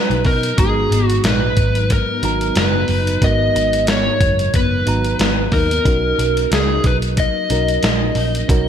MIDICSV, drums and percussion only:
0, 0, Header, 1, 2, 480
1, 0, Start_track
1, 0, Key_signature, 5, "minor"
1, 0, Tempo, 658617
1, 428, Time_signature, 4, 2, 24, 8
1, 6330, End_track
2, 0, Start_track
2, 0, Title_t, "Drums"
2, 80, Note_on_c, 9, 42, 34
2, 152, Note_off_c, 9, 42, 0
2, 179, Note_on_c, 9, 46, 46
2, 182, Note_on_c, 9, 36, 100
2, 252, Note_off_c, 9, 46, 0
2, 255, Note_off_c, 9, 36, 0
2, 316, Note_on_c, 9, 42, 58
2, 389, Note_off_c, 9, 42, 0
2, 423, Note_on_c, 9, 42, 97
2, 424, Note_on_c, 9, 36, 125
2, 496, Note_off_c, 9, 42, 0
2, 497, Note_off_c, 9, 36, 0
2, 672, Note_on_c, 9, 42, 82
2, 745, Note_off_c, 9, 42, 0
2, 799, Note_on_c, 9, 42, 55
2, 872, Note_off_c, 9, 42, 0
2, 902, Note_on_c, 9, 42, 98
2, 910, Note_on_c, 9, 38, 109
2, 975, Note_off_c, 9, 42, 0
2, 983, Note_off_c, 9, 38, 0
2, 1142, Note_on_c, 9, 42, 69
2, 1144, Note_on_c, 9, 36, 88
2, 1215, Note_off_c, 9, 42, 0
2, 1217, Note_off_c, 9, 36, 0
2, 1277, Note_on_c, 9, 42, 50
2, 1350, Note_off_c, 9, 42, 0
2, 1385, Note_on_c, 9, 42, 87
2, 1388, Note_on_c, 9, 36, 98
2, 1458, Note_off_c, 9, 42, 0
2, 1461, Note_off_c, 9, 36, 0
2, 1625, Note_on_c, 9, 42, 68
2, 1698, Note_off_c, 9, 42, 0
2, 1757, Note_on_c, 9, 42, 46
2, 1830, Note_off_c, 9, 42, 0
2, 1862, Note_on_c, 9, 42, 92
2, 1873, Note_on_c, 9, 38, 101
2, 1935, Note_off_c, 9, 42, 0
2, 1946, Note_off_c, 9, 38, 0
2, 2098, Note_on_c, 9, 46, 44
2, 2171, Note_off_c, 9, 46, 0
2, 2239, Note_on_c, 9, 42, 58
2, 2312, Note_off_c, 9, 42, 0
2, 2345, Note_on_c, 9, 36, 114
2, 2345, Note_on_c, 9, 42, 96
2, 2418, Note_off_c, 9, 36, 0
2, 2418, Note_off_c, 9, 42, 0
2, 2595, Note_on_c, 9, 42, 81
2, 2668, Note_off_c, 9, 42, 0
2, 2720, Note_on_c, 9, 42, 59
2, 2793, Note_off_c, 9, 42, 0
2, 2822, Note_on_c, 9, 42, 92
2, 2830, Note_on_c, 9, 38, 115
2, 2895, Note_off_c, 9, 42, 0
2, 2903, Note_off_c, 9, 38, 0
2, 3065, Note_on_c, 9, 36, 93
2, 3066, Note_on_c, 9, 42, 74
2, 3138, Note_off_c, 9, 36, 0
2, 3139, Note_off_c, 9, 42, 0
2, 3201, Note_on_c, 9, 42, 52
2, 3273, Note_off_c, 9, 42, 0
2, 3307, Note_on_c, 9, 42, 84
2, 3309, Note_on_c, 9, 36, 90
2, 3380, Note_off_c, 9, 42, 0
2, 3382, Note_off_c, 9, 36, 0
2, 3547, Note_on_c, 9, 42, 65
2, 3620, Note_off_c, 9, 42, 0
2, 3677, Note_on_c, 9, 42, 44
2, 3749, Note_off_c, 9, 42, 0
2, 3785, Note_on_c, 9, 42, 94
2, 3796, Note_on_c, 9, 38, 103
2, 3858, Note_off_c, 9, 42, 0
2, 3869, Note_off_c, 9, 38, 0
2, 4021, Note_on_c, 9, 46, 50
2, 4023, Note_on_c, 9, 36, 97
2, 4094, Note_off_c, 9, 46, 0
2, 4096, Note_off_c, 9, 36, 0
2, 4163, Note_on_c, 9, 42, 61
2, 4236, Note_off_c, 9, 42, 0
2, 4266, Note_on_c, 9, 36, 123
2, 4268, Note_on_c, 9, 42, 97
2, 4339, Note_off_c, 9, 36, 0
2, 4341, Note_off_c, 9, 42, 0
2, 4514, Note_on_c, 9, 42, 80
2, 4587, Note_off_c, 9, 42, 0
2, 4642, Note_on_c, 9, 42, 53
2, 4715, Note_off_c, 9, 42, 0
2, 4750, Note_on_c, 9, 42, 91
2, 4757, Note_on_c, 9, 38, 107
2, 4823, Note_off_c, 9, 42, 0
2, 4830, Note_off_c, 9, 38, 0
2, 4984, Note_on_c, 9, 42, 70
2, 4986, Note_on_c, 9, 36, 94
2, 5057, Note_off_c, 9, 42, 0
2, 5059, Note_off_c, 9, 36, 0
2, 5118, Note_on_c, 9, 42, 50
2, 5191, Note_off_c, 9, 42, 0
2, 5226, Note_on_c, 9, 42, 87
2, 5230, Note_on_c, 9, 36, 98
2, 5299, Note_off_c, 9, 42, 0
2, 5303, Note_off_c, 9, 36, 0
2, 5466, Note_on_c, 9, 42, 70
2, 5539, Note_off_c, 9, 42, 0
2, 5600, Note_on_c, 9, 42, 49
2, 5673, Note_off_c, 9, 42, 0
2, 5704, Note_on_c, 9, 42, 92
2, 5715, Note_on_c, 9, 38, 99
2, 5777, Note_off_c, 9, 42, 0
2, 5787, Note_off_c, 9, 38, 0
2, 5941, Note_on_c, 9, 46, 45
2, 6013, Note_off_c, 9, 46, 0
2, 6085, Note_on_c, 9, 42, 61
2, 6157, Note_off_c, 9, 42, 0
2, 6188, Note_on_c, 9, 36, 121
2, 6192, Note_on_c, 9, 42, 101
2, 6261, Note_off_c, 9, 36, 0
2, 6265, Note_off_c, 9, 42, 0
2, 6330, End_track
0, 0, End_of_file